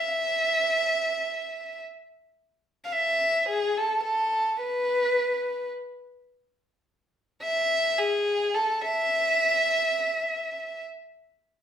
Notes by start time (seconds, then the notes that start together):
Already playing: E5
2.85 F5
2.92 E5
3.49 G#4
3.77 A4
4.04 A4
4.60 B4
7.43 E5
7.98 G#4
8.55 A4
8.82 E5